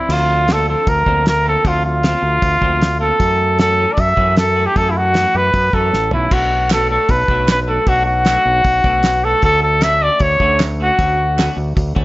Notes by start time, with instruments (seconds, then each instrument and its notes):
Already playing: trumpet E4
0.09 fingered electric bass D2, clean electric guitar F3 C4 D4, trumpet F4, open hi-hat, crash
0.29 muted clean electric guitar stroke
0.48 clean electric guitar D3 F3 A#3 C4 F4, snare, open hi-hat
0.52 trumpet A4
0.68 clean electric guitar F3 C4 D4, trumpet A4, muted clean electric guitar stroke
0.87 fingered electric bass D2, clean electric guitar F3, trumpet A#4, muted clean electric guitar stroke, kick, open hi-hat
1.06 fingered electric bass D2, clean electric guitar D3 F3 A#3 C4 D4 F4, kick
1.25 clean electric guitar C4, trumpet A#4, muted clean electric guitar stroke, snare, open hi-hat
1.45 clean electric guitar D3 F3 A#3 C4 F4, trumpet A4
1.65 fingered electric bass D2, clean electric guitar F3 C4 D4, trumpet F4, muted clean electric guitar stroke, kick, open hi-hat
1.85 clean electric guitar F3 C4, trumpet F4, muted clean electric guitar stroke
2.03 clean electric guitar D3 F3 A#3 C4 D4 F4, snare, open hi-hat
2.22 fingered electric bass D2, muted clean electric guitar stroke
2.42 fingered electric bass D2, clean electric guitar F3 C4, kick, open hi-hat
2.61 fingered electric bass D2, clean electric guitar D3 F3 A#3 C4 D4 F4, kick
2.82 clean electric guitar F3, snare, open hi-hat
3.01 clean electric guitar D3 F3 A#3 C4 F4, trumpet A4
3.20 fingered electric bass F#2, clean electric guitar E3 A3 C#4, muted clean electric guitar stroke, kick, open hi-hat
3.39 clean electric guitar E3 A3
3.58 clean electric guitar E3 A3 C#4 F#4, trumpet A4, snare, open hi-hat
3.78 clean electric guitar E3 A3 C#4, muted clean electric guitar stroke
3.93 trumpet D5
3.97 fingered electric bass F#2, clean electric guitar E3 A3, trumpet E5, muted clean electric guitar stroke, kick, open hi-hat
4.16 fingered electric bass F#2, clean electric guitar E3 A3 C#4 F#4, kick
4.20 clean electric guitar C#4
4.36 trumpet A4, muted clean electric guitar stroke, snare, open hi-hat
4.56 clean electric guitar E3 A3 C#4 F#4
4.66 trumpet G4
4.76 fingered electric bass F#2, clean electric guitar E3 A3 C#4, trumpet A4, muted clean electric guitar stroke, kick, open hi-hat
4.90 trumpet E4
4.96 clean electric guitar E3 A3, trumpet F#4, muted clean electric guitar stroke
5.14 clean electric guitar E3 A3 C#4 F#4, snare, open hi-hat
5.35 fingered electric bass F#2, clean electric guitar E3 A3, trumpet B4, muted clean electric guitar stroke
5.54 fingered electric bass F#2, clean electric guitar E3 A3, muted clean electric guitar stroke, kick, open hi-hat
5.73 fingered electric bass F#2, clean electric guitar E3 A3 C#4 F#4, trumpet A4, kick
5.93 fingered electric bass A1, clean electric guitar E3 A3, muted clean electric guitar stroke, snare
6.11 fingered electric bass B1, clean electric guitar E3 A3 C#4 F#4, trumpet E4, floor tom
6.31 fingered electric bass B1, clean electric guitar A3 D4 F#4, trumpet F#4, muted clean electric guitar stroke, kick, crash
6.51 clean electric guitar A3 D4, muted clean electric guitar stroke
6.70 clean electric guitar F#3 A3 D4 F#4, trumpet A4, snare, clap, open hi-hat
6.90 clean electric guitar A3 D4 F#4, trumpet A4, muted clean electric guitar stroke
7.09 fingered electric bass B1, clean electric guitar A3 D4, trumpet B4, muted clean electric guitar stroke, kick, open hi-hat
7.28 fingered electric bass B1, clean electric guitar F#3 A3 D4 F#4, kick
7.47 clean electric guitar D4, snare, clap, open hi-hat
7.51 trumpet B4
7.68 clean electric guitar F#3 A3 D4 F#4, trumpet A4
7.87 fingered electric bass B1, clean electric guitar A3 D4 F#4, trumpet F#4, kick, open hi-hat
8.06 clean electric guitar A3 D4, trumpet F#4, muted clean electric guitar stroke
8.25 clean electric guitar F#3 A3 D4 F#4, snare, clap, open hi-hat
8.45 fingered electric bass B1, clean electric guitar D4, muted clean electric guitar stroke
8.64 fingered electric bass B1, clean electric guitar A3 D4, kick, open hi-hat
8.84 fingered electric bass B1, clean electric guitar F#3 A3 D4 F#4, kick
9.03 clean electric guitar A3 D4, muted clean electric guitar stroke, snare, clap, open hi-hat
9.24 clean electric guitar F#3 A3 D4 F#4, trumpet A4
9.42 fingered electric bass D2, clean electric guitar A3 C#4 F#4, trumpet A4, muted clean electric guitar stroke, kick, open hi-hat
9.63 clean electric guitar C#4, trumpet A4
9.81 clean electric guitar D3 A3 C#4 F#4, trumpet E5, snare, clap, open hi-hat
10.02 clean electric guitar A3 C#4 F#4, trumpet D5, muted clean electric guitar stroke
10.20 fingered electric bass D2, trumpet C#5, kick, open hi-hat
10.40 fingered electric bass D2, clean electric guitar D3 A3 C#4 F#4, kick
10.59 snare, clap, open hi-hat
10.80 clean electric guitar D3 A3 C#4 F#4, trumpet F#4
10.99 fingered electric bass D2, clean electric guitar A3 C#4 F#4, kick, open hi-hat
11.17 clean electric guitar A3 C#4, muted clean electric guitar stroke
11.37 clean electric guitar D3 A3 C#4 F#4, snare, clap, open hi-hat
11.57 fingered electric bass D2, clean electric guitar A3 C#4, muted clean electric guitar stroke
11.76 fingered electric bass D2, clean electric guitar A3 C#4, muted clean electric guitar stroke, kick, open hi-hat
11.95 fingered electric bass D2, clean electric guitar D3 A3 C#4 F#4, kick